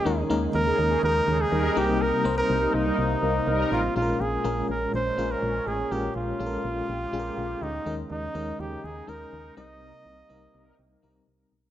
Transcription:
Already playing: analog synth pad G#3, flugelhorn G#4
0.05 fm bass D#2, analog synth pad C#3 D#4, fm electric piano D#3 G#3 A#3 C#4 D#4 A#4
0.30 fm bass D#2, fm electric piano G#3 A#3 C#4 D#4 A#4
0.54 fm bass D#2, flugelhorn A#4
0.66 analog polysynth D#3 C#4 G#4
0.78 fm bass D#2
0.90 analog polysynth D#3 C#4 G#4
1.03 fm bass D#2, flugelhorn A#4
1.27 fm bass D#2, analog polysynth D#3 C#4 G#4
1.41 flugelhorn G#4
1.52 fm bass D#2, analog polysynth G3 D#4 A#4
1.76 fm bass C2, analog synth pad C3 A#3 D#4, fm electric piano C3 G3 A#3 C4 D#4 A#4, flugelhorn G4
2.02 flugelhorn A#4
2.24 fm bass C2, fm electric piano G3 A#3 C4 D#4 C5
2.38 flugelhorn A#4
2.49 fm bass C2
2.61 analog polysynth G3 D#4 A#4
2.74 fm bass C2, flugelhorn D#4
2.86 analog polysynth G3 D#4 A#4
2.98 fm bass C2
3.22 fm bass C2, analog polysynth G3 D#4 A#4
3.47 fm bass C2, analog polysynth G3 D#4 A#4
3.71 fm bass A1, flugelhorn F4
3.95 fm bass A#1, analog synth pad A#2 G#3 C#4, fm electric piano A#2 G#3 C#4 F4 G#4, flugelhorn F4
4.02 fm electric piano A#4
4.20 fm bass A#1, flugelhorn G#4
4.44 fm bass A#1, fm electric piano G#3 C#4 F4 A#4
4.69 fm bass A#1, flugelhorn A#4
4.94 fm bass A#1, flugelhorn C5
5.17 fm bass A#1, fm electric piano G#3 C#4 F4 A#4
5.31 flugelhorn A#4
5.42 fm bass A#1
5.67 fm bass A1, flugelhorn G#4
5.91 fm bass A#1, fm electric piano A#2 G#3 C#4 F4 A#4, analog synth pad G4, flugelhorn G4
6.15 fm bass A#1, flugelhorn F4
6.39 fm bass A#1, fm electric piano G#3 C#4 F4 A4
6.46 fm electric piano A#4
6.64 fm bass A#1
6.89 fm bass A#1
7.12 fm bass A#1, fm electric piano G#3 C#4 F4 G#4
7.19 fm electric piano A#4
7.37 fm bass A#1
7.61 fm bass D2, flugelhorn D#4
7.86 fm bass D#2, analog synth pad C#3 G#3 D#4, fm electric piano D#3 G#3 C#4 D#4 A#4
8.10 fm bass D#2, flugelhorn D#4
8.34 fm bass D#2, fm electric piano G#3 C#4 D#4 A#4
8.59 fm bass D#2, flugelhorn G4
8.84 fm bass D#2, flugelhorn G#4
9.07 fm bass D#2, fm electric piano G#3 C#4 D#4 A#4, flugelhorn A#4
9.33 fm bass D#2
9.57 fm bass C2, analog synth pad C3 A#3, fm electric piano C3 G3 C4 D#4 A#4, flugelhorn D#5
9.82 analog polysynth G3 D#4 A#4
10.05 fm bass C2
10.29 fm bass C2, fm electric piano G3 C4 D#4 A#4
10.54 fm bass C2, analog polysynth G3 D#4 A#4
10.79 fm bass C2
11.02 fm bass C2, fm electric piano G3 C4 D#4 A#4
11.27 fm bass C2
11.52 fm bass B1

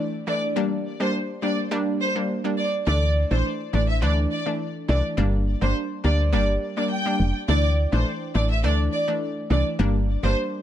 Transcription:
Already playing: synth pluck E3 A3 D4
0.27 synth pluck E3 A3 D4, violin section D5
0.56 synth pluck G3 A#3 D4
1.00 synth pluck G3 A#3 D4, violin section C5
1.42 synth pluck G3 A#3 D4, violin section D5
1.71 synth pluck G3 A#3 D4
2.00 violin section C5
2.15 synth pluck G3 A#3 D4
2.44 synth pluck G3 A#3 D4
2.58 violin section D5
2.87 fm bass D2, synth pluck E3 A3 D4, violin section D5
3.31 fm bass A#1, synth pluck E3 A3 D4, violin section C5
3.73 fm bass A1, synth pluck E3 A3 D4, violin section D5
3.89 violin section E5
4.02 fm bass D2, synth pluck E3 A3 D4, violin section D5
4.31 violin section D5
4.46 synth pluck E3 A3 D4
4.88 fm bass C2, synth pluck E3 A3 D4, violin section D5
5.17 fm bass G1, synth pluck G3 A#3 D4
5.61 fm bass G1, synth pluck G3 A#3 D4, violin section C5
6.04 fm bass D2, synth pluck G3 A#3 D4, violin section D5
6.33 fm bass G1, synth pluck G3 A#3 D4, violin section D5
6.77 synth pluck G3 A#3 D4, violin section D5
6.91 violin section G5
7.05 synth pluck G3 A#3 D4
7.20 fm bass F1
7.48 fm bass D2, synth pluck E3 A3 D4, violin section D5
7.92 fm bass A#1, synth pluck E3 A3 D4, violin section C5
8.34 fm bass A1, synth pluck E3 A3 D4, violin section D5
8.50 violin section E5
8.63 fm bass D2, synth pluck E3 A3 D4, violin section D5
8.93 violin section D5
9.08 synth pluck E3 A3 D4
9.50 fm bass C2, synth pluck E3 A3 D4, violin section D5
9.79 fm bass G1, synth pluck G3 A#3 D4
10.23 fm bass G1, synth pluck G3 A#3 D4, violin section C5

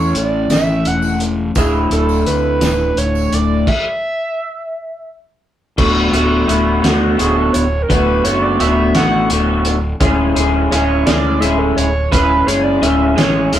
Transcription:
Already playing: fingered electric bass E2, clean electric guitar A2 E3 A3 C#4 E4 A4, analog synth lead C#5
0.14 fingered electric bass A1, analog synth lead D5, closed hi-hat
0.49 fingered electric bass A1, analog synth lead E5, snare, closed hi-hat, tambourine
0.85 fingered electric bass E1, analog synth lead F#5, closed hi-hat
1.02 tambourine
1.20 closed hi-hat
1.55 fingered electric bass D1, clean electric guitar D2 A2 D3 A3 E4, analog synth lead G#4, kick, closed hi-hat, tambourine
1.91 fingered electric bass D1, analog synth lead A4, closed hi-hat
2.09 tambourine
2.26 fingered electric bass D2, analog synth lead B4, closed hi-hat, tambourine
2.61 fingered electric bass D1, snare, closed hi-hat, tambourine
2.96 fingered electric bass D1, analog synth lead C#5, closed hi-hat
3.15 tambourine
3.31 fingered electric bass D1, analog synth lead D5, closed hi-hat
3.67 analog synth lead E5, kick, crash
5.78 fingered electric bass D1, clean electric guitar D3 A3 B3 F#4, kick, crash
6.12 fingered electric bass D1, clean electric guitar D3 A3 B3 F#4, closed hi-hat
6.47 fingered electric bass D1, clean electric guitar D3 A3 B3 F#4, analog synth lead E4, closed hi-hat
6.82 fingered electric bass D2, clean electric guitar D3 A3 B3 F#4, analog synth lead F#4, snare, closed hi-hat
7.17 fingered electric bass D1, clean electric guitar D3 A3 B3 F#4, analog synth lead G#4, closed hi-hat
7.36 analog synth lead A4
7.53 fingered electric bass D1, analog synth lead C#5, closed hi-hat
7.82 analog synth lead A#4
7.89 fingered electric bass D1, clean electric guitar D3 A3 B3 F#4, analog synth lead B4, kick, closed hi-hat
8.24 fingered electric bass F#1, clean electric guitar D3 A3 B3 F#4, analog synth lead C#5, closed hi-hat
8.42 analog synth lead D5
8.59 fingered electric bass D1, clean electric guitar D3 A3 B3 F#4, analog synth lead E5, closed hi-hat
8.95 fingered electric bass A1, clean electric guitar D3 A3 B3 F#4, analog synth lead F#5, snare, closed hi-hat
9.30 fingered electric bass D1, clean electric guitar D3 A3 B3 F#4, closed hi-hat
9.65 closed hi-hat
10.00 fingered electric bass D1, clean electric guitar G#3 C#4 E4 G#4, kick, closed hi-hat
10.35 fingered electric bass D1, clean electric guitar G#3 C#4 E4 G#4, closed hi-hat
10.71 fingered electric bass D1, clean electric guitar G#3 C#4 E4 G#4, analog synth lead C#5, closed hi-hat
11.06 fingered electric bass D2, clean electric guitar G#3 C#4 E4 G#4, analog synth lead D5, snare, closed hi-hat
11.40 fingered electric bass D1, clean electric guitar G#3 C#4 E4 G#4, analog synth lead E5, closed hi-hat
11.58 analog synth lead A4
11.77 fingered electric bass D1, analog synth lead C#5, closed hi-hat
12.11 fingered electric bass D1, clean electric guitar G#3 C#4 E4 G#4, analog synth lead B4, kick, closed hi-hat
12.46 fingered electric bass F#1, clean electric guitar G#3 C#4 E4 G#4, analog synth lead C#5, closed hi-hat
12.63 analog synth lead D5
12.82 fingered electric bass D1, clean electric guitar G#3 C#4 E4 G#4, analog synth lead E5, closed hi-hat
13.16 fingered electric bass A1, clean electric guitar G#3 C#4 E4 G#4, analog synth lead C#5, snare, closed hi-hat
13.52 fingered electric bass D1, clean electric guitar G#3 C#4 E4 G#4, closed hi-hat

